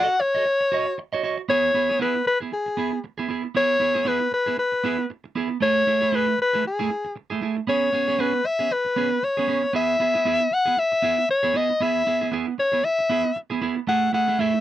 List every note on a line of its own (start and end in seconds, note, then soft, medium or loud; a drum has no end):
0.00 0.15 F#4 loud
0.00 0.22 F#5 loud
0.09 muted clean electric guitar stroke soft
0.20 0.97 C#5 loud
0.20 muted clean electric guitar stroke soft
0.35 0.44 F#4 medium
0.35 0.46 A4 medium
0.35 0.46 D#5 medium
0.46 muted clean electric guitar stroke soft
0.61 muted clean electric guitar stroke medium
0.72 0.93 F#4 medium
0.72 0.87 C#5 medium
0.72 0.86 D#5 medium
0.87 muted clean electric guitar stroke medium
0.98 muted clean electric guitar stroke soft
1.13 1.22 F#4 medium
1.13 1.23 C#5 medium
1.13 1.24 D#5 medium
1.23 1.41 F#4 medium
1.23 1.38 C#5 medium
1.23 1.36 D#5 medium
1.38 muted clean electric guitar stroke medium
1.49 1.70 B3 medium
1.49 1.70 E4 medium
1.49 1.71 G#4 loud
1.49 1.97 C#5 loud
1.74 1.90 B3 medium
1.74 1.89 E4 medium
1.74 1.88 G#4 medium
1.89 1.98 B3 medium
1.89 2.00 E4 medium
1.89 2.01 G#4 medium
2.00 2.21 B3 medium
2.00 2.15 E4 loud
2.00 2.14 G#4 medium
2.00 2.25 B4 medium
2.15 muted clean electric guitar stroke soft
2.26 2.38 B4 medium
2.26 muted clean electric guitar stroke soft
2.40 2.51 B3 soft
2.40 2.51 E4 soft
2.40 2.52 G#4 medium
2.52 3.00 G#4 medium
2.52 muted clean electric guitar stroke soft
2.66 muted clean electric guitar stroke soft
2.77 2.99 B3 medium
2.77 2.92 E4 medium
2.77 2.91 G#4 medium
2.92 muted clean electric guitar stroke soft
3.04 muted clean electric guitar stroke soft
3.18 3.27 B3 medium
3.18 3.29 E4 medium
3.18 3.29 G#4 medium
3.29 3.46 B3 medium
3.29 3.44 E4 medium
3.29 3.42 G#4 medium
3.44 muted clean electric guitar stroke soft
3.55 3.76 B3 medium
3.55 3.76 E4 medium
3.55 3.77 G#4 medium
3.55 4.09 C#5 loud
3.80 3.95 B3 medium
3.80 3.94 E4 medium
3.80 3.93 G#4 medium
3.94 4.04 B3 medium
3.94 4.05 E4 medium
3.94 4.06 G#4 medium
4.05 4.27 B3 medium
4.05 4.20 E4 medium
4.05 4.19 G#4 loud
4.05 4.33 B4 loud
4.20 muted clean electric guitar stroke soft
4.32 4.57 B4 medium
4.32 muted clean electric guitar stroke soft
4.46 4.56 B3 soft
4.46 4.57 E4 medium
4.46 4.58 G#4 medium
4.57 5.07 B4 medium
4.57 muted clean electric guitar stroke soft
4.72 muted clean electric guitar stroke soft
4.84 5.05 B3 medium
4.84 4.98 E4 loud
4.84 4.97 G#4 medium
4.98 muted clean electric guitar stroke soft
5.10 muted clean electric guitar stroke soft
5.24 muted clean electric guitar stroke soft
5.35 5.57 B3 medium
5.35 5.50 E4 medium
5.35 5.48 G#4 medium
5.49 muted clean electric guitar stroke soft
5.61 5.82 A3 medium
5.61 5.83 E4 medium
5.61 5.83 G#4 medium
5.61 6.17 C#5 loud
5.87 6.02 A3 medium
5.87 6.01 E4 medium
5.87 6.00 G#4 medium
6.01 6.11 A3 medium
6.01 6.12 E4 medium
6.01 6.13 G#4 medium
6.12 6.34 A3 medium
6.12 6.28 E4 medium
6.12 6.26 G#4 medium
6.12 6.40 B4 loud
6.28 muted clean electric guitar stroke soft
6.38 6.64 B4 loud
6.38 muted clean electric guitar stroke soft
6.53 6.64 A3 medium
6.53 6.64 E4 medium
6.53 6.65 G#4 medium
6.65 7.14 G#4 medium
6.65 muted clean electric guitar stroke soft
6.79 6.89 A3 medium
6.79 6.90 E4 medium
6.79 6.91 G#4 medium
6.90 muted clean electric guitar stroke soft
7.05 muted clean electric guitar stroke soft
7.16 muted clean electric guitar stroke soft
7.30 7.40 A3 medium
7.30 7.41 E4 medium
7.30 7.42 G#4 medium
7.41 7.59 A3 medium
7.41 7.57 E4 medium
7.41 7.55 G#4 medium
7.57 muted clean electric guitar stroke soft
7.67 7.89 B3 medium
7.67 7.89 C#4 loud
7.67 7.90 G#4 loud
7.67 8.22 C#5 medium
7.93 8.08 B3 medium
7.93 8.07 C#4 medium
7.93 8.06 G#4 medium
8.08 8.18 B3 medium
8.08 8.19 C#4 medium
8.08 8.19 G#4 medium
8.19 8.40 B3 medium
8.19 8.34 C#4 medium
8.19 8.32 G#4 loud
8.19 8.47 B4 medium
8.33 muted clean electric guitar stroke soft
8.44 8.74 E5 medium
8.44 muted clean electric guitar stroke soft
8.59 8.70 B3 medium
8.59 8.70 C#4 medium
8.59 8.71 G#4 medium
8.71 9.26 B4 medium
8.71 muted clean electric guitar stroke soft
8.85 muted clean electric guitar stroke soft
8.96 9.18 B3 medium
8.96 9.11 C#4 medium
8.96 9.09 G#4 medium
9.11 muted clean electric guitar stroke soft
9.23 9.75 C#5 medium
9.23 muted clean electric guitar stroke soft
9.37 9.46 B3 medium
9.37 9.47 C#4 medium
9.37 9.48 G#4 medium
9.48 9.66 B3 medium
9.48 9.63 C#4 medium
9.48 9.62 G#4 medium
9.63 muted clean electric guitar stroke soft
9.73 9.95 B3 medium
9.73 9.96 E4 medium
9.73 9.96 G#4 medium
9.73 10.55 E5 loud
10.00 10.15 B3 medium
10.00 10.14 E4 medium
10.00 10.13 G#4 medium
10.14 10.24 B3 medium
10.14 10.25 E4 medium
10.14 10.26 G#4 medium
10.25 10.47 B3 medium
10.25 10.40 E4 medium
10.25 10.39 G#4 medium
10.40 muted clean electric guitar stroke soft
10.51 10.80 F#5 loud
10.51 muted clean electric guitar stroke soft
10.66 10.76 B3 medium
10.66 10.77 E4 medium
10.66 10.77 G#4 medium
10.77 11.30 E5 loud
10.77 muted clean electric guitar stroke soft
10.92 muted clean electric guitar stroke medium
11.02 11.24 B3 medium
11.02 11.18 E4 medium
11.02 11.16 G#4 medium
11.18 muted clean electric guitar stroke soft
11.29 11.58 C#5 medium
11.29 muted clean electric guitar stroke soft
11.43 11.53 B3 medium
11.43 11.54 E4 medium
11.43 11.55 G#4 loud
11.54 11.72 B3 medium
11.54 11.69 E4 medium
11.54 11.68 G#4 medium
11.54 11.84 D#5 medium
11.69 muted clean electric guitar stroke soft
11.80 12.02 B3 medium
11.80 12.02 E4 medium
11.80 12.03 G#4 medium
11.80 12.32 E5 loud
12.07 12.22 B3 medium
12.07 12.21 E4 medium
12.07 12.20 G#4 medium
12.21 12.30 B3 soft
12.21 12.32 E4 medium
12.21 12.32 G#4 medium
12.32 12.53 B3 medium
12.32 12.47 E4 medium
12.32 12.46 G#4 loud
12.47 muted clean electric guitar stroke soft
12.58 12.86 C#5 loud
12.58 muted clean electric guitar stroke soft
12.72 12.83 B3 medium
12.72 12.84 E4 medium
12.72 12.84 G#4 medium
12.84 13.36 E5 loud
12.84 muted clean electric guitar stroke soft
12.99 muted clean electric guitar stroke soft
13.10 13.31 B3 medium
13.10 13.25 E4 medium
13.10 13.23 G#4 medium
13.25 muted clean electric guitar stroke soft
13.36 muted clean electric guitar stroke soft
13.50 13.60 B3 medium
13.50 13.61 E4 medium
13.50 13.62 G#4 medium
13.62 13.79 B3 medium
13.62 13.76 E4 medium
13.62 13.75 G#4 medium
13.76 muted clean electric guitar stroke soft
13.87 14.08 A3 medium
13.87 14.09 E4 medium
13.87 14.09 G#4 medium
13.87 14.12 F#5 loud
14.13 14.28 A3 medium
14.13 14.27 E4 medium
14.13 14.27 G#4 medium
14.13 14.41 F#5 medium
14.28 14.38 A3 medium
14.28 14.39 E4 medium
14.28 14.40 G#4 medium
14.39 14.60 A3 medium
14.39 14.53 E4 medium
14.39 14.52 G#4 medium
14.39 14.61 E5 medium
14.54 muted clean electric guitar stroke soft